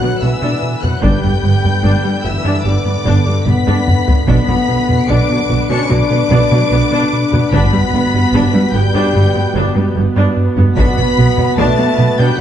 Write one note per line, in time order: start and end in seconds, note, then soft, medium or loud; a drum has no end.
0.00 0.14 B2 medium
0.00 0.10 B2 medium
0.00 0.87 D3 medium
0.00 0.22 F#3 loud
0.00 0.09 F#3 medium
0.00 0.87 B3 medium
0.00 4.24 B4 medium
0.00 0.23 F#5 loud
0.00 0.23 F#6 loud
0.21 0.30 B1 medium
0.21 0.35 B2 medium
0.21 0.31 B2 medium
0.21 0.84 E3 loud
0.21 0.29 B3 medium
0.21 0.83 E5 medium
0.21 0.83 E6 loud
0.41 0.55 B2 loud
0.41 0.51 B2 loud
0.41 0.61 D4 loud
0.63 0.75 B2 medium
0.82 0.95 B2 medium
0.82 0.91 B2 medium
0.82 1.04 F#3 medium
0.82 0.90 B3 medium
0.82 1.04 F#5 medium
0.82 1.04 F#6 loud
0.82 taiko low-mid medium
1.02 1.11 G1 loud
1.02 1.16 G2 loud
1.02 1.11 G2 loud
1.02 7.35 D3 medium
1.02 2.23 G3 loud
1.02 7.35 B3 medium
1.02 1.21 D4 loud
1.02 2.22 G5 loud
1.02 2.22 G6 loud
1.02 taiko loud
1.22 1.32 G2 medium
1.22 1.30 G3 medium
1.22 1.36 G3 medium
1.22 taiko low-mid medium
1.43 1.52 G1 medium
1.43 1.52 G2 medium
1.43 1.56 G2 medium
1.43 1.51 B3 medium
1.63 1.72 G2 medium
1.63 1.76 G2 medium
1.63 1.71 G3 medium
1.63 taiko low-mid medium
1.83 1.92 G1 medium
1.83 1.96 G2 loud
1.83 1.92 G2 loud
1.83 2.03 D4 loud
2.04 2.13 G2 medium
2.04 2.12 G3 medium
2.04 2.17 G3 medium
2.23 2.33 G1 medium
2.23 2.33 G2 medium
2.23 2.37 G2 medium
2.23 2.66 E3 loud
2.23 2.31 B3 medium
2.23 2.66 E5 loud
2.23 2.65 E6 loud
2.44 2.57 G2 loud
2.44 2.53 G2 loud
2.44 2.64 D4 loud
2.65 2.73 G1 medium
2.65 2.78 G2 medium
2.65 2.74 G2 medium
2.65 3.45 D3 loud
2.65 2.73 G3 medium
2.65 3.45 D5 loud
2.65 3.46 D6 loud
2.85 2.98 G2 medium
2.85 2.94 G2 medium
2.85 2.93 B3 medium
3.05 3.14 G1 loud
3.05 3.18 G2 loud
3.05 3.14 G2 loud
3.05 3.25 D4 loud
3.26 3.38 G2 medium
3.26 3.35 G2 medium
3.26 3.34 G3 medium
3.46 3.54 G1 medium
3.46 3.59 G2 medium
3.46 3.55 G2 medium
3.46 4.11 B3 loud
3.46 3.54 B3 medium
3.46 4.26 B5 loud
3.46 4.26 B6 loud
3.46 taiko mid loud
3.67 3.79 G2 loud
3.67 3.75 G2 loud
3.67 3.86 D4 loud
3.67 taiko low-mid medium
3.87 4.00 G2 medium
3.87 taiko low-mid loud
4.07 4.15 G2 medium
4.07 4.20 G2 medium
4.07 4.15 B3 medium
4.07 taiko low loud
4.27 4.35 B1 loud
4.27 4.36 B2 loud
4.27 4.40 B2 loud
4.27 5.07 B3 loud
4.27 4.46 D4 loud
4.27 10.72 B4 loud
4.27 5.07 B5 loud
4.27 5.07 B6 loud
4.27 taiko loud
4.47 4.56 B2 medium
4.47 4.55 F#3 medium
4.47 4.60 B3 medium
4.47 taiko low-mid medium
4.68 4.76 B1 medium
4.68 4.76 B2 medium
4.68 4.81 B2 medium
4.68 4.76 B3 medium
4.88 5.01 B2 medium
4.88 4.97 B2 medium
4.88 4.96 F#3 medium
4.88 taiko low-mid medium
5.08 5.16 B1 loud
5.08 5.17 B2 loud
5.08 5.21 B2 loud
5.08 5.70 D4 loud
5.08 5.28 D4 loud
5.08 5.69 D6 loud
5.08 5.70 D7 loud
5.29 5.37 B2 medium
5.29 5.37 F#3 medium
5.29 5.42 B3 medium
5.49 5.57 B1 medium
5.49 5.57 B2 medium
5.49 5.62 B2 medium
5.49 5.57 B3 medium
5.69 5.78 B2 loud
5.69 5.82 B2 loud
5.69 5.90 C#4 loud
5.69 5.88 D4 loud
5.69 5.90 C#6 loud
5.69 5.90 C#7 loud
5.89 5.97 B1 medium
5.89 5.98 B2 medium
5.89 6.03 B2 medium
5.89 5.97 F#3 medium
5.89 7.52 D4 loud
5.89 7.52 D6 loud
5.89 7.52 D7 loud
6.10 6.18 B2 medium
6.10 6.23 B2 medium
6.10 6.18 B3 medium
6.30 6.38 B1 loud
6.30 6.39 B2 loud
6.30 6.43 B2 loud
6.30 6.50 D4 loud
6.51 6.59 B2 medium
6.51 6.63 B2 medium
6.51 6.59 F#3 loud
6.71 6.79 B1 medium
6.71 6.80 B2 medium
6.71 6.84 B2 medium
6.71 6.80 B3 loud
6.91 7.00 B2 loud
6.91 7.04 B2 loud
6.91 7.10 D4 loud
7.13 7.25 B2 medium
7.32 7.44 B2 medium
7.32 7.40 B2 medium
7.32 7.41 B3 loud
7.32 taiko low-mid medium
7.52 7.60 G1 loud
7.52 7.61 G2 loud
7.52 7.65 G2 loud
7.52 12.41 B2 medium
7.52 8.71 B3 loud
7.52 12.41 B3 loud
7.52 7.71 D4 loud
7.52 8.72 B5 loud
7.52 8.72 B6 loud
7.52 taiko loud
7.73 7.81 G2 medium
7.73 7.81 G3 medium
7.73 7.85 G3 medium
7.73 taiko low-mid medium
7.92 8.00 G1 loud
7.92 8.02 G2 medium
7.92 8.06 G2 loud
7.92 8.02 B3 medium
8.14 8.26 G2 medium
8.14 8.22 G2 medium
8.14 8.22 G3 medium
8.14 taiko low-mid medium
8.33 8.41 G1 loud
8.33 8.46 G2 loud
8.33 8.42 G2 loud
8.33 8.52 D4 loud
8.54 8.62 G2 medium
8.54 8.62 G3 medium
8.54 8.66 G3 medium
8.73 8.81 G1 medium
8.73 8.86 G2 medium
8.73 8.83 G2 medium
8.73 9.93 G3 loud
8.73 8.82 B3 medium
8.73 9.96 G5 loud
8.73 9.96 G6 loud
8.95 9.07 G2 loud
8.95 9.03 G2 loud
8.95 9.13 D4 loud
9.14 9.22 G1 medium
9.14 9.27 G2 medium
9.14 9.23 G2 medium
9.14 9.23 G3 medium
9.35 9.47 G2 medium
9.35 9.43 G2 medium
9.35 9.43 B3 medium
9.35 taiko rim soft
9.55 9.63 G1 loud
9.55 9.67 G2 loud
9.55 9.63 G2 loud
9.55 9.74 D4 loud
9.75 9.88 G2 medium
9.75 9.84 G2 medium
9.75 9.83 G3 loud
9.95 10.03 G1 medium
9.95 10.08 G2 loud
9.95 10.04 G2 medium
9.95 10.04 B3 medium
10.16 10.24 G2 loud
10.16 10.28 G2 loud
10.16 10.35 D4 loud
10.16 taiko rim soft
10.37 10.49 G2 medium
10.56 10.65 G2 medium
10.56 10.69 G2 medium
10.56 10.65 B3 loud
10.56 taiko low-mid medium
10.76 10.84 B1 loud
10.76 10.85 B2 loud
10.76 10.89 B2 loud
10.76 11.54 B3 loud
10.76 10.96 D4 medium
10.76 12.41 B4 loud
10.76 11.54 B5 loud
10.76 11.54 B6 loud
10.76 taiko loud
10.97 11.05 B2 medium
10.97 11.05 F#3 medium
10.97 11.09 B3 medium
10.97 taiko low-mid medium
11.17 11.25 B1 medium
11.17 11.30 B2 medium
11.17 11.26 B2 medium
11.17 11.25 B3 medium
11.37 11.45 B2 medium
11.37 11.50 B2 medium
11.37 11.46 F#3 medium
11.37 taiko low-mid medium
11.57 11.66 B1 loud
11.57 11.66 B2 loud
11.57 11.70 B2 loud
11.57 12.19 A3 loud
11.57 11.77 D4 loud
11.57 12.18 A5 loud
11.57 12.18 A6 loud
11.78 11.86 B2 medium
11.78 11.87 F#3 medium
11.78 11.91 B3 medium
11.98 12.06 B1 medium
11.98 12.11 B2 medium
11.98 12.07 B2 medium
11.98 12.07 B3 medium
12.19 12.27 B2 loud
12.19 12.31 B2 loud
12.19 12.39 G3 loud
12.19 12.38 D4 loud
12.19 12.38 G5 loud
12.19 12.40 G6 loud